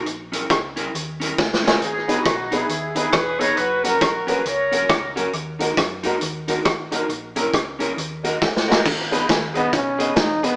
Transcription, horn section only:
X:1
M:4/4
L:1/16
Q:"Swing" 1/4=136
K:G#m
V:1 name="Horn section"
z16 | [DG]3 [DF]3 [EG]4 [EG]2 [GB]2 [Ac]2 | [FB]2 [FA]4 [GB]2 [Ac]6 z2 | z16 |
z16 | z16 |]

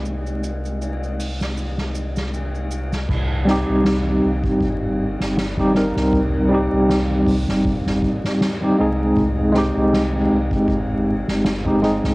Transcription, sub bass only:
X:1
M:4/4
L:1/16
Q:"Swing 16ths" 1/4=79
K:Ablyd
V:1 name="Sub bass" clef=bass
C,,16 | C,,3 C,,3 C,, G,,,4 G,,,4 C,,- | C,,3 C,,3 C,, G,,,2 G,,, z4 C,,2 | C,,3 C,,3 C,, G,,,4 G,,,4 C,, |]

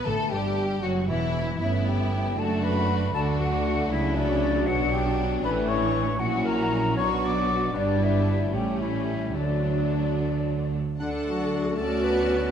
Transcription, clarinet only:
X:1
M:6/8
L:1/8
Q:3/8=77
K:D
V:1 name="Clarinet"
A G2 F E2 | E G2 A B2 | A F2 E D2 | F G z B c2 |
F ^A2 c d2 | D E2 G E2 | D4- D z | D F2 A B2 |]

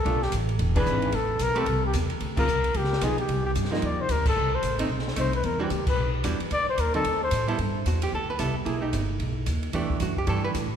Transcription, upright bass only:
X:1
M:4/4
L:1/8
Q:"Swing" 1/4=223
K:G
V:1 name="Upright bass" clef=bass
B,,,2 A,,,2 E,,,2 ^G,,,2 | A,,,2 B,,,2 C,,2 E,,2 | D,,2 C,,2 ^C,,2 B,,,2 | C,,2 G,,2 _E,,2 D,,2 |
C,,2 A,,,2 B,,,2 C,,2 | E,,2 D,, z B,,,2 E,, z | D,, z _E,,2 D,,2 A,,2 | G,,2 E,,2 D,,2 C,,2 |
B,,,2 G,,,2 B,,,2 ^D,,2 | E,, z F,,2 G,,2 A,,2 |]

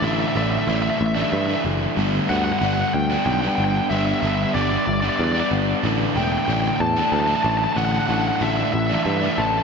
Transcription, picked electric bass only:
X:1
M:3/4
L:1/8
Q:1/4=93
K:Ador
V:1 name="Picked electric bass" clef=bass
A,,, A,,, A,,, A,,, G,, F,,, | G,,, D,, G,,, D,, B,,, G,,, | G,,, G,,, G,,, G,,, E,, G,,, | A,,, E,,, A,,, E,, D,, A,,, |
A,,, A,,, A,,, A,,, G,, A,,, |]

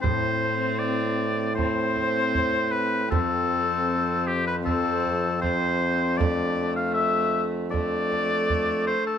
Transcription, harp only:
X:1
M:4/4
L:1/8
Q:1/4=78
K:Am
V:1 name="Harp"
[CEA]4 [CEA]4 | [CFA]4 [CFA]2 [CFA]2 | [A,DA]4 [A,DA]4 |]
V:2 name="Harp" clef=bass
A,,8 | F,,8- | F,,6- F,, z |]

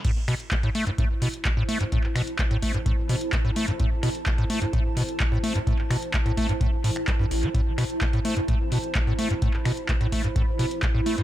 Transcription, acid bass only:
X:1
M:4/4
L:1/16
Q:1/4=128
K:Am
V:1 name="Acid bass" clef=bass
A,, z B,, z A, A,, A, G,, A,, z B,, z A, A,, A, G,, | A,, z B,, z A, A,, A, G,, A,, z B,, z A, A,, A, G,, | A,, z B,, z A, A,, A, G,, A,, z B,, z A, A,, A, G,, | A,, z B,, z A, A,, A, G,, A,, z A,, z G, G,, A,,, G, |
A,, z B,, z A, A,, A, G,, A,, z B,, z A, A,, A, G,, | A,, z B,, z A, A,, A, G,, A,, z B,, z A, A,, A, G,, |]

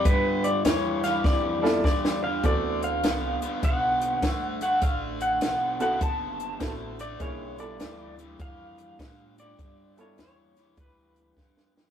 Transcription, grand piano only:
X:1
M:4/4
L:1/8
Q:"Swing" 1/4=101
K:Ddor
V:1 name="Grand piano"
z4 z [B,DEFA] z2 | [E,B,C^FA]3 z4 z | z3 [B,CE^FA] z2 [B,CEFA] z | [_B,^C_E=E_A] [=B,DEF=A]2 z4 z |
z [B,DEFA] z6 |]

